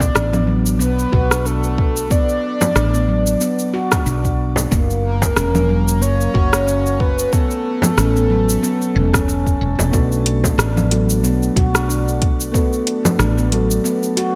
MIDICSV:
0, 0, Header, 1, 7, 480
1, 0, Start_track
1, 0, Key_signature, 2, "minor"
1, 0, Tempo, 652174
1, 1551, Time_signature, 4, 2, 24, 8
1, 10563, End_track
2, 0, Start_track
2, 0, Title_t, "Soft synth lead"
2, 0, Program_c, 0, 80
2, 0, Note_on_c, 0, 74, 125
2, 319, Note_off_c, 0, 74, 0
2, 589, Note_on_c, 0, 71, 93
2, 1074, Note_on_c, 0, 69, 93
2, 1085, Note_off_c, 0, 71, 0
2, 1550, Note_on_c, 0, 74, 115
2, 1561, Note_off_c, 0, 69, 0
2, 2511, Note_off_c, 0, 74, 0
2, 3709, Note_on_c, 0, 70, 87
2, 3933, Note_off_c, 0, 70, 0
2, 3947, Note_on_c, 0, 70, 100
2, 4428, Note_on_c, 0, 73, 120
2, 4439, Note_off_c, 0, 70, 0
2, 5147, Note_off_c, 0, 73, 0
2, 5151, Note_on_c, 0, 71, 93
2, 5388, Note_on_c, 0, 69, 102
2, 5399, Note_off_c, 0, 71, 0
2, 7070, Note_off_c, 0, 69, 0
2, 10563, End_track
3, 0, Start_track
3, 0, Title_t, "Felt piano"
3, 0, Program_c, 1, 0
3, 7292, Note_on_c, 1, 57, 95
3, 7299, Note_on_c, 1, 59, 78
3, 7305, Note_on_c, 1, 62, 86
3, 7315, Note_on_c, 1, 66, 82
3, 7321, Note_on_c, 1, 69, 96
3, 7453, Control_c, 1, 64, 127
3, 7996, Note_off_c, 1, 57, 0
3, 8000, Note_off_c, 1, 59, 0
3, 8003, Note_off_c, 1, 62, 0
3, 8008, Note_off_c, 1, 66, 0
3, 8011, Note_off_c, 1, 69, 0
3, 8011, Note_on_c, 1, 57, 65
3, 8017, Note_on_c, 1, 59, 65
3, 8023, Note_on_c, 1, 62, 68
3, 8032, Note_on_c, 1, 66, 64
3, 8041, Note_on_c, 1, 69, 74
3, 9196, Note_off_c, 1, 57, 0
3, 9199, Note_off_c, 1, 59, 0
3, 9202, Note_off_c, 1, 62, 0
3, 9206, Note_off_c, 1, 66, 0
3, 9211, Note_off_c, 1, 69, 0
3, 9212, Note_on_c, 1, 57, 97
3, 9222, Note_on_c, 1, 59, 77
3, 9227, Note_on_c, 1, 62, 82
3, 9238, Note_on_c, 1, 66, 82
3, 9241, Note_on_c, 1, 69, 101
3, 9916, Note_off_c, 1, 57, 0
3, 9921, Note_off_c, 1, 59, 0
3, 9924, Note_off_c, 1, 62, 0
3, 9930, Note_off_c, 1, 66, 0
3, 9931, Note_off_c, 1, 69, 0
3, 9937, Note_on_c, 1, 57, 74
3, 9943, Note_on_c, 1, 59, 68
3, 9948, Note_on_c, 1, 62, 65
3, 9955, Note_on_c, 1, 66, 66
3, 9965, Note_on_c, 1, 69, 82
3, 10563, Note_off_c, 1, 57, 0
3, 10563, Note_off_c, 1, 59, 0
3, 10563, Note_off_c, 1, 62, 0
3, 10563, Note_off_c, 1, 66, 0
3, 10563, Note_off_c, 1, 69, 0
3, 10563, End_track
4, 0, Start_track
4, 0, Title_t, "Handpan"
4, 0, Program_c, 2, 114
4, 0, Note_on_c, 2, 59, 93
4, 99, Note_off_c, 2, 59, 0
4, 108, Note_on_c, 2, 62, 73
4, 238, Note_off_c, 2, 62, 0
4, 241, Note_on_c, 2, 59, 71
4, 344, Note_off_c, 2, 59, 0
4, 347, Note_on_c, 2, 54, 69
4, 578, Note_off_c, 2, 54, 0
4, 584, Note_on_c, 2, 59, 86
4, 817, Note_off_c, 2, 59, 0
4, 827, Note_on_c, 2, 66, 95
4, 957, Note_off_c, 2, 66, 0
4, 961, Note_on_c, 2, 62, 69
4, 1061, Note_off_c, 2, 62, 0
4, 1070, Note_on_c, 2, 62, 75
4, 1199, Note_off_c, 2, 62, 0
4, 1549, Note_on_c, 2, 59, 90
4, 2020, Note_off_c, 2, 59, 0
4, 2029, Note_on_c, 2, 62, 77
4, 2158, Note_off_c, 2, 62, 0
4, 2165, Note_on_c, 2, 59, 74
4, 2265, Note_off_c, 2, 59, 0
4, 2270, Note_on_c, 2, 54, 66
4, 2500, Note_off_c, 2, 54, 0
4, 2509, Note_on_c, 2, 59, 87
4, 2740, Note_off_c, 2, 59, 0
4, 2750, Note_on_c, 2, 66, 99
4, 2878, Note_off_c, 2, 66, 0
4, 2884, Note_on_c, 2, 62, 71
4, 2979, Note_off_c, 2, 62, 0
4, 2988, Note_on_c, 2, 62, 76
4, 3118, Note_off_c, 2, 62, 0
4, 3469, Note_on_c, 2, 58, 96
4, 3940, Note_off_c, 2, 58, 0
4, 3949, Note_on_c, 2, 61, 78
4, 4078, Note_off_c, 2, 61, 0
4, 4085, Note_on_c, 2, 58, 73
4, 4186, Note_off_c, 2, 58, 0
4, 4189, Note_on_c, 2, 54, 68
4, 4420, Note_off_c, 2, 54, 0
4, 4427, Note_on_c, 2, 58, 88
4, 4659, Note_off_c, 2, 58, 0
4, 4667, Note_on_c, 2, 66, 100
4, 4797, Note_off_c, 2, 66, 0
4, 4802, Note_on_c, 2, 61, 73
4, 4897, Note_off_c, 2, 61, 0
4, 4906, Note_on_c, 2, 61, 74
4, 5037, Note_off_c, 2, 61, 0
4, 5391, Note_on_c, 2, 59, 97
4, 5861, Note_off_c, 2, 59, 0
4, 5872, Note_on_c, 2, 61, 74
4, 6000, Note_off_c, 2, 61, 0
4, 6006, Note_on_c, 2, 59, 67
4, 6106, Note_off_c, 2, 59, 0
4, 6109, Note_on_c, 2, 54, 72
4, 6340, Note_off_c, 2, 54, 0
4, 6350, Note_on_c, 2, 59, 88
4, 6472, Note_off_c, 2, 59, 0
4, 6589, Note_on_c, 2, 61, 71
4, 6711, Note_off_c, 2, 61, 0
4, 6724, Note_on_c, 2, 61, 92
4, 6821, Note_off_c, 2, 61, 0
4, 6830, Note_on_c, 2, 61, 90
4, 6908, Note_off_c, 2, 61, 0
4, 7309, Note_on_c, 2, 59, 93
4, 7780, Note_off_c, 2, 59, 0
4, 7788, Note_on_c, 2, 62, 77
4, 7918, Note_off_c, 2, 62, 0
4, 7922, Note_on_c, 2, 59, 71
4, 8024, Note_off_c, 2, 59, 0
4, 8029, Note_on_c, 2, 54, 69
4, 8259, Note_off_c, 2, 54, 0
4, 8270, Note_on_c, 2, 59, 84
4, 8500, Note_off_c, 2, 59, 0
4, 8512, Note_on_c, 2, 66, 98
4, 8640, Note_off_c, 2, 66, 0
4, 8645, Note_on_c, 2, 62, 69
4, 8742, Note_off_c, 2, 62, 0
4, 8751, Note_on_c, 2, 62, 77
4, 8879, Note_off_c, 2, 62, 0
4, 9228, Note_on_c, 2, 59, 96
4, 9699, Note_off_c, 2, 59, 0
4, 9708, Note_on_c, 2, 62, 78
4, 9838, Note_off_c, 2, 62, 0
4, 9843, Note_on_c, 2, 59, 75
4, 9945, Note_off_c, 2, 59, 0
4, 9949, Note_on_c, 2, 54, 67
4, 10180, Note_off_c, 2, 54, 0
4, 10188, Note_on_c, 2, 59, 92
4, 10419, Note_off_c, 2, 59, 0
4, 10429, Note_on_c, 2, 66, 100
4, 10558, Note_off_c, 2, 66, 0
4, 10563, End_track
5, 0, Start_track
5, 0, Title_t, "Fretless electric bass"
5, 0, Program_c, 3, 35
5, 109, Note_on_c, 3, 33, 89
5, 589, Note_off_c, 3, 33, 0
5, 589, Note_on_c, 3, 35, 93
5, 772, Note_off_c, 3, 35, 0
5, 832, Note_on_c, 3, 35, 76
5, 1745, Note_off_c, 3, 35, 0
5, 2028, Note_on_c, 3, 33, 90
5, 2463, Note_off_c, 3, 33, 0
5, 2989, Note_on_c, 3, 35, 83
5, 3423, Note_off_c, 3, 35, 0
5, 3473, Note_on_c, 3, 30, 97
5, 3905, Note_off_c, 3, 30, 0
5, 3948, Note_on_c, 3, 28, 95
5, 4428, Note_off_c, 3, 28, 0
5, 4428, Note_on_c, 3, 30, 99
5, 4611, Note_off_c, 3, 30, 0
5, 4671, Note_on_c, 3, 30, 76
5, 5344, Note_off_c, 3, 30, 0
5, 5870, Note_on_c, 3, 33, 94
5, 6303, Note_off_c, 3, 33, 0
5, 6592, Note_on_c, 3, 28, 87
5, 7025, Note_off_c, 3, 28, 0
5, 7074, Note_on_c, 3, 28, 88
5, 7170, Note_off_c, 3, 28, 0
5, 7202, Note_on_c, 3, 28, 85
5, 7280, Note_off_c, 3, 28, 0
5, 7310, Note_on_c, 3, 35, 96
5, 7743, Note_off_c, 3, 35, 0
5, 7786, Note_on_c, 3, 33, 85
5, 8265, Note_off_c, 3, 33, 0
5, 8265, Note_on_c, 3, 35, 93
5, 8449, Note_off_c, 3, 35, 0
5, 8510, Note_on_c, 3, 35, 73
5, 9423, Note_off_c, 3, 35, 0
5, 9708, Note_on_c, 3, 33, 92
5, 10142, Note_off_c, 3, 33, 0
5, 10563, End_track
6, 0, Start_track
6, 0, Title_t, "Frame drum"
6, 1, Note_on_c, 9, 64, 80
6, 75, Note_off_c, 9, 64, 0
6, 1922, Note_on_c, 9, 64, 93
6, 1996, Note_off_c, 9, 64, 0
6, 2884, Note_on_c, 9, 64, 79
6, 2957, Note_off_c, 9, 64, 0
6, 3355, Note_on_c, 9, 64, 93
6, 3428, Note_off_c, 9, 64, 0
6, 3841, Note_on_c, 9, 64, 97
6, 3914, Note_off_c, 9, 64, 0
6, 5755, Note_on_c, 9, 64, 93
6, 5829, Note_off_c, 9, 64, 0
6, 6723, Note_on_c, 9, 64, 85
6, 6797, Note_off_c, 9, 64, 0
6, 7204, Note_on_c, 9, 64, 86
6, 7277, Note_off_c, 9, 64, 0
6, 7682, Note_on_c, 9, 64, 86
6, 7755, Note_off_c, 9, 64, 0
6, 9605, Note_on_c, 9, 64, 87
6, 9678, Note_off_c, 9, 64, 0
6, 10563, End_track
7, 0, Start_track
7, 0, Title_t, "Drums"
7, 6, Note_on_c, 9, 36, 58
7, 10, Note_on_c, 9, 69, 57
7, 79, Note_off_c, 9, 36, 0
7, 84, Note_off_c, 9, 69, 0
7, 114, Note_on_c, 9, 37, 73
7, 115, Note_on_c, 9, 69, 49
7, 188, Note_off_c, 9, 37, 0
7, 189, Note_off_c, 9, 69, 0
7, 246, Note_on_c, 9, 64, 50
7, 247, Note_on_c, 9, 69, 28
7, 319, Note_off_c, 9, 64, 0
7, 321, Note_off_c, 9, 69, 0
7, 486, Note_on_c, 9, 69, 60
7, 559, Note_off_c, 9, 69, 0
7, 594, Note_on_c, 9, 69, 56
7, 667, Note_off_c, 9, 69, 0
7, 730, Note_on_c, 9, 69, 31
7, 803, Note_off_c, 9, 69, 0
7, 831, Note_on_c, 9, 36, 98
7, 905, Note_off_c, 9, 36, 0
7, 966, Note_on_c, 9, 37, 73
7, 967, Note_on_c, 9, 69, 59
7, 1040, Note_off_c, 9, 37, 0
7, 1041, Note_off_c, 9, 69, 0
7, 1074, Note_on_c, 9, 69, 52
7, 1148, Note_off_c, 9, 69, 0
7, 1205, Note_on_c, 9, 69, 30
7, 1278, Note_off_c, 9, 69, 0
7, 1312, Note_on_c, 9, 36, 104
7, 1385, Note_off_c, 9, 36, 0
7, 1446, Note_on_c, 9, 69, 64
7, 1519, Note_off_c, 9, 69, 0
7, 1552, Note_on_c, 9, 36, 118
7, 1552, Note_on_c, 9, 69, 52
7, 1625, Note_off_c, 9, 69, 0
7, 1626, Note_off_c, 9, 36, 0
7, 1686, Note_on_c, 9, 69, 31
7, 1759, Note_off_c, 9, 69, 0
7, 1921, Note_on_c, 9, 64, 53
7, 1923, Note_on_c, 9, 69, 61
7, 1995, Note_off_c, 9, 64, 0
7, 1996, Note_off_c, 9, 69, 0
7, 2029, Note_on_c, 9, 37, 73
7, 2031, Note_on_c, 9, 69, 51
7, 2103, Note_off_c, 9, 37, 0
7, 2104, Note_off_c, 9, 69, 0
7, 2167, Note_on_c, 9, 69, 31
7, 2240, Note_off_c, 9, 69, 0
7, 2403, Note_on_c, 9, 69, 65
7, 2477, Note_off_c, 9, 69, 0
7, 2508, Note_on_c, 9, 69, 56
7, 2582, Note_off_c, 9, 69, 0
7, 2642, Note_on_c, 9, 69, 35
7, 2716, Note_off_c, 9, 69, 0
7, 2882, Note_on_c, 9, 37, 75
7, 2884, Note_on_c, 9, 69, 64
7, 2887, Note_on_c, 9, 36, 98
7, 2956, Note_off_c, 9, 37, 0
7, 2958, Note_off_c, 9, 69, 0
7, 2961, Note_off_c, 9, 36, 0
7, 2989, Note_on_c, 9, 69, 55
7, 3063, Note_off_c, 9, 69, 0
7, 3126, Note_on_c, 9, 69, 32
7, 3127, Note_on_c, 9, 36, 57
7, 3200, Note_off_c, 9, 36, 0
7, 3200, Note_off_c, 9, 69, 0
7, 3367, Note_on_c, 9, 69, 65
7, 3441, Note_off_c, 9, 69, 0
7, 3472, Note_on_c, 9, 36, 113
7, 3473, Note_on_c, 9, 69, 53
7, 3546, Note_off_c, 9, 36, 0
7, 3546, Note_off_c, 9, 69, 0
7, 3609, Note_on_c, 9, 69, 34
7, 3683, Note_off_c, 9, 69, 0
7, 3846, Note_on_c, 9, 69, 69
7, 3847, Note_on_c, 9, 36, 61
7, 3920, Note_off_c, 9, 36, 0
7, 3920, Note_off_c, 9, 69, 0
7, 3948, Note_on_c, 9, 37, 69
7, 3950, Note_on_c, 9, 69, 50
7, 4022, Note_off_c, 9, 37, 0
7, 4024, Note_off_c, 9, 69, 0
7, 4084, Note_on_c, 9, 64, 50
7, 4085, Note_on_c, 9, 69, 32
7, 4157, Note_off_c, 9, 64, 0
7, 4159, Note_off_c, 9, 69, 0
7, 4327, Note_on_c, 9, 69, 65
7, 4401, Note_off_c, 9, 69, 0
7, 4432, Note_on_c, 9, 69, 60
7, 4506, Note_off_c, 9, 69, 0
7, 4569, Note_on_c, 9, 69, 35
7, 4643, Note_off_c, 9, 69, 0
7, 4672, Note_on_c, 9, 36, 109
7, 4746, Note_off_c, 9, 36, 0
7, 4806, Note_on_c, 9, 37, 71
7, 4808, Note_on_c, 9, 69, 61
7, 4880, Note_off_c, 9, 37, 0
7, 4881, Note_off_c, 9, 69, 0
7, 4915, Note_on_c, 9, 69, 50
7, 4989, Note_off_c, 9, 69, 0
7, 5051, Note_on_c, 9, 69, 32
7, 5125, Note_off_c, 9, 69, 0
7, 5153, Note_on_c, 9, 36, 104
7, 5226, Note_off_c, 9, 36, 0
7, 5290, Note_on_c, 9, 69, 72
7, 5364, Note_off_c, 9, 69, 0
7, 5393, Note_on_c, 9, 36, 117
7, 5393, Note_on_c, 9, 69, 50
7, 5466, Note_off_c, 9, 36, 0
7, 5466, Note_off_c, 9, 69, 0
7, 5526, Note_on_c, 9, 69, 32
7, 5600, Note_off_c, 9, 69, 0
7, 5766, Note_on_c, 9, 64, 53
7, 5767, Note_on_c, 9, 69, 65
7, 5839, Note_off_c, 9, 64, 0
7, 5841, Note_off_c, 9, 69, 0
7, 5871, Note_on_c, 9, 37, 72
7, 5873, Note_on_c, 9, 69, 53
7, 5945, Note_off_c, 9, 37, 0
7, 5946, Note_off_c, 9, 69, 0
7, 6010, Note_on_c, 9, 69, 32
7, 6084, Note_off_c, 9, 69, 0
7, 6250, Note_on_c, 9, 69, 64
7, 6324, Note_off_c, 9, 69, 0
7, 6358, Note_on_c, 9, 69, 56
7, 6431, Note_off_c, 9, 69, 0
7, 6490, Note_on_c, 9, 69, 31
7, 6564, Note_off_c, 9, 69, 0
7, 6727, Note_on_c, 9, 36, 97
7, 6728, Note_on_c, 9, 37, 68
7, 6730, Note_on_c, 9, 69, 68
7, 6801, Note_off_c, 9, 36, 0
7, 6802, Note_off_c, 9, 37, 0
7, 6803, Note_off_c, 9, 69, 0
7, 6836, Note_on_c, 9, 69, 51
7, 6909, Note_off_c, 9, 69, 0
7, 6966, Note_on_c, 9, 36, 62
7, 6971, Note_on_c, 9, 69, 32
7, 7040, Note_off_c, 9, 36, 0
7, 7044, Note_off_c, 9, 69, 0
7, 7210, Note_on_c, 9, 69, 67
7, 7283, Note_off_c, 9, 69, 0
7, 7311, Note_on_c, 9, 36, 105
7, 7311, Note_on_c, 9, 69, 50
7, 7385, Note_off_c, 9, 36, 0
7, 7385, Note_off_c, 9, 69, 0
7, 7448, Note_on_c, 9, 69, 31
7, 7522, Note_off_c, 9, 69, 0
7, 7551, Note_on_c, 9, 42, 86
7, 7625, Note_off_c, 9, 42, 0
7, 7686, Note_on_c, 9, 36, 58
7, 7690, Note_on_c, 9, 69, 66
7, 7760, Note_off_c, 9, 36, 0
7, 7763, Note_off_c, 9, 69, 0
7, 7794, Note_on_c, 9, 37, 70
7, 7795, Note_on_c, 9, 69, 55
7, 7867, Note_off_c, 9, 37, 0
7, 7869, Note_off_c, 9, 69, 0
7, 7929, Note_on_c, 9, 64, 51
7, 7930, Note_on_c, 9, 69, 28
7, 8002, Note_off_c, 9, 64, 0
7, 8004, Note_off_c, 9, 69, 0
7, 8032, Note_on_c, 9, 42, 80
7, 8106, Note_off_c, 9, 42, 0
7, 8167, Note_on_c, 9, 69, 63
7, 8241, Note_off_c, 9, 69, 0
7, 8273, Note_on_c, 9, 69, 55
7, 8347, Note_off_c, 9, 69, 0
7, 8411, Note_on_c, 9, 69, 34
7, 8484, Note_off_c, 9, 69, 0
7, 8511, Note_on_c, 9, 36, 108
7, 8514, Note_on_c, 9, 42, 88
7, 8585, Note_off_c, 9, 36, 0
7, 8587, Note_off_c, 9, 42, 0
7, 8647, Note_on_c, 9, 37, 69
7, 8648, Note_on_c, 9, 69, 62
7, 8720, Note_off_c, 9, 37, 0
7, 8722, Note_off_c, 9, 69, 0
7, 8759, Note_on_c, 9, 69, 51
7, 8832, Note_off_c, 9, 69, 0
7, 8893, Note_on_c, 9, 69, 32
7, 8966, Note_off_c, 9, 69, 0
7, 8992, Note_on_c, 9, 36, 106
7, 8992, Note_on_c, 9, 42, 80
7, 9065, Note_off_c, 9, 36, 0
7, 9065, Note_off_c, 9, 42, 0
7, 9129, Note_on_c, 9, 69, 67
7, 9203, Note_off_c, 9, 69, 0
7, 9232, Note_on_c, 9, 36, 100
7, 9235, Note_on_c, 9, 69, 51
7, 9305, Note_off_c, 9, 36, 0
7, 9309, Note_off_c, 9, 69, 0
7, 9369, Note_on_c, 9, 69, 30
7, 9443, Note_off_c, 9, 69, 0
7, 9472, Note_on_c, 9, 42, 84
7, 9545, Note_off_c, 9, 42, 0
7, 9607, Note_on_c, 9, 64, 58
7, 9608, Note_on_c, 9, 69, 62
7, 9680, Note_off_c, 9, 64, 0
7, 9682, Note_off_c, 9, 69, 0
7, 9711, Note_on_c, 9, 37, 68
7, 9712, Note_on_c, 9, 69, 49
7, 9784, Note_off_c, 9, 37, 0
7, 9786, Note_off_c, 9, 69, 0
7, 9849, Note_on_c, 9, 69, 29
7, 9922, Note_off_c, 9, 69, 0
7, 9952, Note_on_c, 9, 42, 76
7, 10025, Note_off_c, 9, 42, 0
7, 10088, Note_on_c, 9, 69, 63
7, 10162, Note_off_c, 9, 69, 0
7, 10195, Note_on_c, 9, 69, 56
7, 10269, Note_off_c, 9, 69, 0
7, 10326, Note_on_c, 9, 69, 33
7, 10400, Note_off_c, 9, 69, 0
7, 10430, Note_on_c, 9, 42, 85
7, 10503, Note_off_c, 9, 42, 0
7, 10563, End_track
0, 0, End_of_file